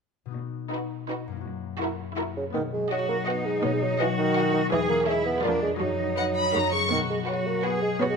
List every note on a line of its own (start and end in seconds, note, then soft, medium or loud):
0.26 1.47 B2 soft
0.26 1.44 B3 soft
0.31 1.42 D#4 soft
0.31 1.40 F#4 soft
0.36 0.65 B2 soft
0.73 1.00 D#4 soft
0.73 1.01 F#4 soft
0.73 1.00 B4 soft
1.10 1.36 D#4 soft
1.10 1.37 F#4 soft
1.10 1.36 B4 soft
1.28 2.48 F#2 soft
1.32 2.50 A#3 soft
1.37 2.53 E4 soft
1.41 3.08 F#4 soft
1.45 1.74 F#2 soft
1.81 2.09 E4 soft
1.81 2.08 F#4 soft
1.81 2.09 A#4 soft
2.17 2.46 E4 soft
2.17 2.45 F#4 soft
2.17 2.46 A#4 soft
2.37 2.45 C#3 soft
2.54 3.63 B2 soft
2.54 2.63 D#3 medium
2.54 2.85 B3 soft
2.73 3.81 F#3 soft
2.73 2.93 G#3 soft
2.91 3.08 F#3 soft
2.91 3.26 D#4 soft
2.91 3.19 F#4 soft
2.91 3.26 F#4 soft
2.91 3.19 D#5 soft
2.91 3.19 F#5 soft
3.09 3.17 A#3 medium
3.09 4.18 F#4 soft
3.28 3.47 B3 medium
3.28 4.00 D#4 soft
3.28 3.99 D#4 soft
3.28 3.55 F#4 soft
3.28 3.55 D#5 soft
3.28 3.55 F#5 soft
3.46 3.66 G#3 medium
3.46 4.53 B3 soft
3.64 4.73 B2 soft
3.64 3.73 F#3 medium
3.64 3.93 B3 soft
3.73 3.84 G#3 soft
3.82 4.73 F#3 soft
3.82 3.99 F#3 medium
4.00 4.08 E3 medium
4.00 4.35 D#4 soft
4.00 4.27 F#4 soft
4.00 4.72 F#4 medium
4.00 4.27 D#5 soft
4.00 4.27 F#5 soft
4.18 4.53 D#3 medium
4.18 4.74 F#4 soft
4.36 4.73 D#4 soft
4.36 4.63 F#4 soft
4.36 4.63 D#5 soft
4.36 4.63 F#5 medium
4.54 4.62 D#3 medium
4.54 4.73 B3 soft
4.72 5.45 E2 soft
4.72 4.80 E3 medium
4.72 5.00 E3 medium
4.72 5.07 G#4 medium
4.89 5.46 E3 soft
4.89 5.09 A#3 medium
5.07 5.25 G#3 medium
5.07 5.46 C#4 soft
5.07 5.43 E4 soft
5.07 5.34 G#4 soft
5.07 5.34 C#5 soft
5.07 5.34 E5 soft
5.26 5.45 B3 medium
5.26 5.62 G#4 soft
5.43 5.83 F2 soft
5.43 5.74 F3 soft
5.43 5.61 A#3 medium
5.43 5.80 D4 soft
5.43 5.71 F4 soft
5.43 5.71 B4 soft
5.43 5.71 D5 soft
5.62 5.70 G#3 medium
5.62 5.83 D4 soft
5.62 5.83 G#4 soft
5.81 6.54 F#2 soft
5.81 6.10 F#3 soft
5.81 6.74 F#3 medium
5.81 6.71 D#4 soft
6.00 7.09 F#3 soft
6.17 6.45 D#4 soft
6.17 6.56 D#4 soft
6.17 6.45 B4 soft
6.17 6.25 F#5 soft
6.36 6.56 B4 soft
6.36 6.54 B5 soft
6.53 6.93 F#2 soft
6.53 6.84 F#3 soft
6.53 6.81 F#4 soft
6.53 6.81 A#4 soft
6.53 6.73 A#5 soft
6.73 6.91 C#3 soft
6.73 7.28 F#4 soft
6.73 6.93 A#4 soft
6.73 6.91 C#6 soft
6.91 7.99 B2 soft
6.91 7.00 D#3 medium
6.91 7.20 B3 soft
6.91 7.25 F#4 soft
7.10 8.17 F#3 soft
7.10 7.18 G#3 soft
7.27 7.48 F#3 soft
7.27 7.55 F#4 soft
7.27 7.64 F#4 soft
7.27 7.55 B4 soft
7.27 7.55 F#5 soft
7.46 7.65 A#3 medium
7.46 8.17 B4 soft
7.64 7.81 B3 medium
7.64 7.91 F#4 soft
7.64 8.17 F#4 soft
7.64 8.00 G#4 soft
7.64 7.91 B4 soft
7.64 7.92 F#5 soft
7.82 7.90 G#3 medium
7.82 8.17 B3 soft
8.00 8.17 B2 soft
8.00 8.04 F#3 medium
8.00 8.17 B3 medium
8.00 8.17 F#4 soft
8.10 8.14 G#3 soft